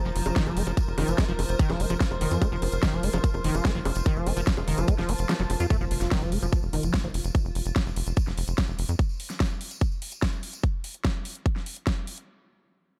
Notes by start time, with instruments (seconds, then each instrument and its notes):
Already playing: synth drone F3 A#4, ambient pad F4 C5 A#5
0.05 analog synth bass F1, acid bass F3, tambourine
0.16 analog synth bass F1, open hi-hat
0.26 analog synth bass F1, closed hi-hat, tambourine, high bongo
0.36 acid bass D#3, kick, snare, closed hi-hat, tambourine
0.46 analog synth bass F#1, acid bass F3, tambourine, high bongo
0.51 ambient pad C6
0.57 analog synth bass F1, acid bass A3, open hi-hat
0.67 analog synth bass F1, acid bass F3, closed hi-hat, tambourine, high bongo
0.77 kick, closed hi-hat, tambourine
0.88 analog synth bass F1, tambourine
0.98 analog synth bass F1, acid bass D#3, open hi-hat, high bongo
1.08 analog synth bass F1, acid bass F3, closed hi-hat, tambourine
1.18 acid bass A3, kick, snare, closed hi-hat, tambourine, high bongo
1.28 analog synth bass F1, acid bass F3, tambourine
1.39 analog synth bass F1, open hi-hat, high bongo
1.49 analog synth bass F1, closed hi-hat, tambourine
1.59 acid bass D#3, kick, closed hi-hat, tambourine
1.70 analog synth bass F1, acid bass F3, snare, tambourine, high bongo
1.80 analog synth bass F1, acid bass A3, open hi-hat
1.90 analog synth bass F1, acid bass F3, closed hi-hat, tambourine, high bongo
2.00 kick, snare, closed hi-hat, tambourine
2.11 analog synth bass F1, tambourine, high bongo
2.21 analog synth bass F1, acid bass D#3, open hi-hat
2.31 analog synth bass F2, acid bass F3, closed hi-hat, tambourine
2.42 acid bass A3, kick, closed hi-hat, tambourine, high bongo
2.52 analog synth bass F1, acid bass F3, tambourine
2.62 analog synth bass F1, open hi-hat, high bongo
2.72 analog synth bass F1, closed hi-hat, tambourine
2.83 acid bass D#3, kick, snare, closed hi-hat, tambourine, high bongo
2.93 analog synth bass F1, acid bass F3, tambourine
3.03 analog synth bass F1, acid bass A3, open hi-hat
3.13 analog synth bass F1, acid bass F3, closed hi-hat, tambourine, high bongo
3.24 kick, closed hi-hat, tambourine
3.34 analog synth bass F1, tambourine, high bongo
3.44 analog synth bass F1, acid bass D#3, open hi-hat
3.55 analog synth bass F1, acid bass F3, closed hi-hat, tambourine, high bongo
3.65 acid bass A3, kick, snare, closed hi-hat, tambourine
3.75 analog synth bass F#1, acid bass F3, tambourine
3.79 ambient pad A5
3.85 analog synth bass F1, open hi-hat, high bongo
3.95 analog synth bass F1, closed hi-hat, tambourine
4.06 acid bass D#3, kick, closed hi-hat, tambourine, high bongo
4.16 analog synth bass F1, acid bass F3, tambourine
4.26 analog synth bass F1, acid bass A3, open hi-hat, high bongo
4.37 analog synth bass F1, acid bass F3, closed hi-hat, tambourine
4.47 kick, snare, closed hi-hat
4.57 analog synth bass F1, tambourine, high bongo
4.68 analog synth bass F1, acid bass D#3, open hi-hat
4.78 analog synth bass F1, acid bass F3, closed hi-hat, tambourine, high bongo
4.88 acid bass A3, kick, closed hi-hat, tambourine
4.98 analog synth bass F1, acid bass F3, snare, tambourine, high bongo
5.09 analog synth bass F1, acid bass C4, open hi-hat
5.18 analog synth bass F1, closed hi-hat, tambourine
5.29 acid bass F3, snare, closed hi-hat, tambourine, high bongo
5.39 analog synth bass F1, acid bass F#3, tambourine
5.50 analog synth bass F1, open hi-hat, high bongo
5.60 analog synth bass F2, acid bass F4, closed hi-hat, tambourine
5.70 acid bass A3, ambient pad F4, kick, closed hi-hat, tambourine, impact
5.81 analog synth bass F1, acid bass F3, tambourine
5.91 analog synth bass F1, open hi-hat
6.01 analog synth bass F1, snare, closed hi-hat, tambourine
6.11 acid bass D#3, kick, snare, closed hi-hat, tambourine
6.22 analog synth bass F1, acid bass F3, tambourine
6.32 analog synth bass F1, acid bass A3, open hi-hat
6.42 analog synth bass F1, acid bass F3, closed hi-hat, tambourine
6.48 ambient pad C5
6.52 kick, closed hi-hat, tambourine
6.63 analog synth bass F1, tambourine
6.73 analog synth bass F1, acid bass D#3, open hi-hat
6.83 analog synth bass F1, acid bass F3, ambient pad C6, closed hi-hat, tambourine
6.94 acid bass A3, kick, snare, closed hi-hat, tambourine
7.03 analog synth bass F#1, acid bass F3, tambourine
7.14 analog synth bass F1, open hi-hat
7.24 analog synth bass F1, closed hi-hat, tambourine
7.35 kick, closed hi-hat, tambourine
7.45 analog synth bass F1, tambourine
7.55 analog synth bass F1, open hi-hat
7.65 analog synth bass F1, closed hi-hat, tambourine
7.76 kick, snare, closed hi-hat, tambourine
7.86 analog synth bass F1, tambourine
7.96 analog synth bass F1, open hi-hat
8.07 analog synth bass F1, closed hi-hat, tambourine
8.17 kick, closed hi-hat, tambourine
8.27 analog synth bass F1, snare, tambourine
8.38 analog synth bass F1, open hi-hat
8.47 analog synth bass F1, closed hi-hat, tambourine
8.57 kick, snare, closed hi-hat, tambourine
8.68 analog synth bass F1, tambourine
8.79 analog synth bass F1, open hi-hat
8.89 analog synth bass F2, closed hi-hat, tambourine
8.99 kick, closed hi-hat, tambourine
9.09 tambourine
9.20 open hi-hat
9.30 snare, closed hi-hat, tambourine
9.40 kick, snare, closed hi-hat, tambourine
9.50 tambourine
9.61 open hi-hat
9.71 closed hi-hat, tambourine
9.81 kick, closed hi-hat, tambourine
9.92 tambourine
10.02 open hi-hat
10.12 closed hi-hat, tambourine
10.22 kick, snare, closed hi-hat, tambourine
10.33 tambourine
10.43 open hi-hat
10.53 closed hi-hat, tambourine
10.64 kick, closed hi-hat
10.84 open hi-hat
10.94 closed hi-hat
11.05 kick, snare, closed hi-hat
11.25 open hi-hat
11.35 closed hi-hat
11.46 kick, closed hi-hat
11.56 snare
11.66 open hi-hat
11.77 closed hi-hat
11.87 kick, snare, closed hi-hat
12.07 open hi-hat
12.18 closed hi-hat